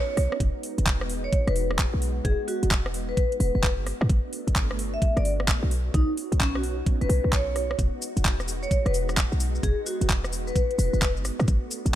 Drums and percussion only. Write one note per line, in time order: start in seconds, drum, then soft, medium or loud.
0.17 cross-stick medium
0.17 open hi-hat loud
0.32 cross-stick medium
0.40 kick loud
0.40 closed hi-hat medium
0.63 open hi-hat loud
0.78 closed hi-hat medium
0.86 kick loud
0.86 clap loud
0.86 closed hi-hat medium
1.01 cross-stick medium
1.09 open hi-hat loud
1.33 kick loud
1.33 closed hi-hat medium
1.48 cross-stick medium
1.48 closed hi-hat soft
1.56 open hi-hat loud
1.71 cross-stick medium
1.79 kick loud
1.79 clap loud
1.79 closed hi-hat medium
2.02 open hi-hat loud
2.25 kick loud
2.25 closed hi-hat medium
2.48 open hi-hat loud
2.63 closed hi-hat medium
2.71 kick loud
2.71 clap loud
2.71 closed hi-hat medium
2.86 cross-stick medium
2.94 open hi-hat loud
3.17 kick loud
3.17 closed hi-hat medium
3.32 closed hi-hat soft
3.40 open hi-hat loud
3.63 kick loud
3.63 clap loud
3.63 closed hi-hat medium
3.87 cross-stick medium
3.87 open hi-hat loud
4.01 cross-stick medium
4.10 kick loud
4.10 closed hi-hat medium
4.33 open hi-hat loud
4.48 closed hi-hat medium
4.56 kick loud
4.56 clap loud
4.56 closed hi-hat medium
4.71 cross-stick medium
4.79 open hi-hat loud
5.02 kick loud
5.02 closed hi-hat medium
5.17 cross-stick medium
5.17 closed hi-hat soft
5.25 open hi-hat loud
5.40 cross-stick medium
5.48 kick loud
5.48 clap loud
5.48 closed hi-hat medium
5.71 open hi-hat loud
5.94 kick loud
5.94 closed hi-hat medium
6.17 open hi-hat loud
6.32 closed hi-hat medium
6.40 kick loud
6.40 clap loud
6.40 closed hi-hat medium
6.55 cross-stick medium
6.63 open hi-hat loud
6.86 kick loud
6.86 closed hi-hat medium
7.01 closed hi-hat soft
7.10 open hi-hat loud
7.33 kick loud
7.33 clap loud
7.33 closed hi-hat medium
7.56 cross-stick medium
7.56 open hi-hat loud
7.71 cross-stick medium
7.79 kick loud
7.79 closed hi-hat medium
7.79 cabasa soft
8.02 open hi-hat loud
8.02 cabasa medium
8.17 closed hi-hat medium
8.17 cabasa soft
8.25 kick loud
8.25 clap loud
8.25 closed hi-hat medium
8.25 cabasa soft
8.40 cross-stick medium
8.40 cabasa soft
8.48 open hi-hat medium
8.48 cabasa medium
8.63 cabasa soft
8.71 kick loud
8.71 closed hi-hat medium
8.71 cabasa soft
8.86 cross-stick medium
8.86 closed hi-hat soft
8.94 open hi-hat loud
8.94 cabasa medium
9.09 cross-stick medium
9.09 cabasa soft
9.17 kick loud
9.17 clap loud
9.17 closed hi-hat medium
9.17 cabasa soft
9.32 cabasa soft
9.40 open hi-hat loud
9.40 cabasa medium
9.55 cabasa soft
9.63 kick loud
9.63 closed hi-hat medium
9.63 cabasa soft
9.86 open hi-hat loud
9.86 cabasa medium
10.01 closed hi-hat medium
10.01 cabasa soft
10.09 kick loud
10.09 clap loud
10.09 closed hi-hat medium
10.09 cabasa soft
10.24 cross-stick medium
10.24 cabasa soft
10.33 open hi-hat loud
10.33 cabasa medium
10.48 cabasa soft
10.56 kick loud
10.56 closed hi-hat medium
10.56 cabasa soft
10.71 closed hi-hat soft
10.79 open hi-hat loud
10.79 cabasa medium
10.94 cabasa soft
11.02 kick loud
11.02 clap loud
11.02 closed hi-hat medium
11.02 cabasa soft
11.17 cabasa soft
11.25 cross-stick medium
11.25 open hi-hat loud
11.25 cabasa medium
11.40 cross-stick medium
11.40 cabasa soft
11.48 kick loud
11.48 closed hi-hat medium
11.48 cabasa soft
11.71 open hi-hat loud
11.71 cabasa medium
11.86 closed hi-hat medium
11.86 cabasa soft